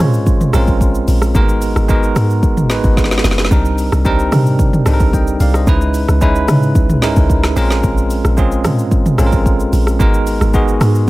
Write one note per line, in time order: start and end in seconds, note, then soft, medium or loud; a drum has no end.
0.00 0.39 A#2 loud
0.00 0.53 G#3 medium
0.00 0.54 C4 medium
0.00 0.54 C#4 medium
0.00 0.55 F4 medium
0.00 0.55 A#4 loud
0.00 1.37 C5 medium
0.00 0.42 C#5 loud
0.00 cross-stick loud
0.00 mid tom medium
0.14 shaker medium
0.26 kick loud
0.26 shaker medium
0.41 mid tom medium
0.41 shaker soft
0.53 1.06 A#1 loud
0.53 1.19 G#3 medium
0.53 1.19 C4 medium
0.53 1.19 C#4 medium
0.53 1.20 F4 medium
0.53 1.20 A#4 medium
0.53 cross-stick loud
0.53 open hi-hat medium
0.53 shaker loud
0.67 kick loud
0.67 shaker medium
0.81 kick medium
0.81 shaker medium
0.95 shaker medium
1.08 1.34 A#1 loud
1.08 open hi-hat medium
1.08 shaker medium
1.22 cross-stick medium
1.22 shaker medium
1.34 1.74 G#1 loud
1.34 1.78 G#3 medium
1.34 1.42 A#3 medium
1.34 1.79 D#4 medium
1.34 1.79 F#4 medium
1.34 1.79 A#4 loud
1.34 kick loud
1.34 shaker medium
1.41 1.82 B3 medium
1.49 shaker medium
1.62 open hi-hat medium
1.62 shaker medium
1.76 2.14 G#1 loud
1.76 cross-stick medium
1.76 shaker medium
1.88 2.54 G#3 medium
1.88 2.54 B3 medium
1.88 2.54 D#4 medium
1.88 2.55 F#4 medium
1.88 2.55 A#4 loud
1.88 kick loud
1.88 shaker medium
2.03 shaker medium
2.16 2.44 G#2 loud
2.16 cross-stick loud
2.16 open hi-hat medium
2.16 shaker medium
2.30 shaker medium
2.43 2.82 G#1 loud
2.43 kick loud
2.43 shaker medium
2.57 mid tom medium
2.57 shaker medium
2.69 3.35 G#3 medium
2.69 3.35 B3 medium
2.69 3.35 D#4 medium
2.69 3.36 F#4 medium
2.69 3.36 B4 medium
2.69 snare medium
2.69 open hi-hat medium
2.69 shaker loud
2.84 3.22 G#1 medium
2.84 kick loud
2.84 shaker medium
2.97 kick medium
2.97 snare medium
2.97 shaker medium
3.04 snare medium
3.11 snare medium
3.11 shaker medium
3.18 snare medium
3.24 3.50 F#1 medium
3.24 snare medium
3.24 open hi-hat medium
3.24 shaker loud
3.31 snare medium
3.38 snare loud
3.45 snare loud
3.51 3.90 C2 loud
3.51 3.95 G3 medium
3.51 3.95 C4 medium
3.51 3.95 D4 medium
3.51 3.95 D#4 medium
3.51 3.95 A#4 medium
3.51 kick loud
3.51 shaker medium
3.65 shaker medium
3.78 open hi-hat medium
3.78 shaker medium
3.92 4.31 C2 loud
3.92 cross-stick medium
3.92 shaker medium
4.04 4.70 G3 medium
4.04 4.70 C4 medium
4.04 4.71 D4 medium
4.04 4.71 D#4 medium
4.04 4.71 A#4 loud
4.04 kick loud
4.04 shaker medium
4.19 shaker medium
4.32 4.72 C3 loud
4.32 cross-stick loud
4.32 mid tom medium
4.32 open hi-hat medium
4.32 shaker medium
4.46 shaker medium
4.59 kick loud
4.59 shaker medium
4.73 mid tom medium
4.73 shaker soft
4.86 5.38 C2 loud
4.86 5.51 G3 medium
4.86 5.51 C4 medium
4.86 5.52 D4 medium
4.86 5.52 D#4 medium
4.86 4.94 A4 medium
4.86 cross-stick loud
4.86 open hi-hat medium
4.86 shaker loud
4.94 5.55 A#4 medium
5.00 kick loud
5.00 shaker medium
5.13 5.39 D#5 medium
5.13 5.39 G5 medium
5.13 kick medium
5.13 shaker medium
5.27 shaker medium
5.40 5.66 C2 loud
5.40 5.54 D5 medium
5.40 5.54 F5 medium
5.40 open hi-hat medium
5.40 shaker loud
5.54 5.81 C5 medium
5.54 5.80 D#5 medium
5.54 cross-stick medium
5.54 shaker medium
5.67 6.07 C#2 loud
5.67 6.11 G#3 medium
5.67 6.11 C#4 medium
5.67 6.11 D#4 medium
5.67 6.12 E4 medium
5.67 6.12 B4 loud
5.67 kick loud
5.67 shaker medium
5.81 shaker medium
5.94 open hi-hat medium
5.94 shaker medium
6.08 6.47 C#2 loud
6.08 cross-stick medium
6.08 shaker medium
6.21 6.86 G#3 medium
6.21 6.87 C#4 medium
6.21 6.87 D#4 medium
6.21 6.87 E4 medium
6.21 6.87 B4 loud
6.21 kick loud
6.21 shaker medium
6.35 shaker medium
6.48 6.77 C#3 loud
6.48 cross-stick loud
6.48 mid tom medium
6.48 open hi-hat medium
6.48 shaker medium
6.63 shaker medium
6.75 7.15 C#2 loud
6.75 kick loud
6.75 shaker medium
6.90 mid tom medium
6.90 shaker medium
7.02 7.55 G#3 medium
7.02 7.56 C#4 medium
7.02 7.57 D#4 medium
7.02 7.57 E4 medium
7.02 7.57 A#4 medium
7.02 snare medium
7.02 open hi-hat medium
7.02 shaker loud
7.16 7.55 C#2 medium
7.16 kick loud
7.16 shaker medium
7.30 kick medium
7.30 shaker medium
7.43 cross-stick loud
7.43 snare medium
7.43 shaker medium
7.56 7.82 A#1 loud
7.56 8.22 G#3 loud
7.56 8.22 C4 medium
7.56 8.22 C#4 medium
7.56 8.22 F4 medium
7.56 8.22 A#4 loud
7.56 open hi-hat medium
7.56 shaker loud
7.70 snare medium
7.70 shaker medium
7.83 8.23 A#1 loud
7.83 kick loud
7.83 shaker medium
7.98 shaker medium
8.10 open hi-hat medium
8.10 shaker medium
8.25 8.66 A#1 loud
8.25 cross-stick medium
8.25 shaker medium
8.37 9.03 G#3 medium
8.37 9.03 C4 medium
8.37 9.03 C#4 medium
8.37 9.03 F4 medium
8.37 9.04 G#4 loud
8.37 kick loud
8.37 shaker medium
8.52 shaker medium
8.64 9.04 A#2 loud
8.64 cross-stick loud
8.64 mid tom medium
8.64 open hi-hat medium
8.64 shaker medium
8.79 shaker medium
8.91 kick loud
8.91 shaker medium
9.06 mid tom medium
9.06 shaker soft
9.18 9.71 A#1 medium
9.18 9.84 G#3 medium
9.18 9.84 C4 medium
9.18 9.84 C#4 medium
9.18 9.84 F4 medium
9.18 9.26 A4 medium
9.18 cross-stick medium
9.18 open hi-hat medium
9.18 shaker loud
9.26 9.88 A#4 medium
9.32 kick loud
9.32 shaker medium
9.46 kick loud
9.46 shaker medium
9.60 shaker medium
9.73 9.99 A#1 loud
9.73 open hi-hat medium
9.73 shaker loud
9.87 cross-stick medium
9.87 shaker medium
9.99 10.39 G#1 loud
9.99 10.43 G#3 medium
9.99 10.43 B3 medium
9.99 10.44 D#4 medium
9.99 10.44 F#4 medium
9.99 10.44 A#4 loud
9.99 kick loud
9.99 shaker medium
10.14 shaker medium
10.27 open hi-hat medium
10.27 shaker medium
10.41 10.79 G#1 loud
10.41 cross-stick medium
10.41 shaker medium
10.54 11.10 G#3 medium
10.54 11.10 B3 medium
10.54 11.10 D#4 medium
10.54 11.10 F#4 medium
10.54 11.10 G#4 loud
10.54 kick loud
10.54 shaker medium
10.68 shaker medium
10.81 11.09 G#2 loud
10.81 cross-stick loud
10.81 open hi-hat medium
10.81 shaker medium
10.95 shaker medium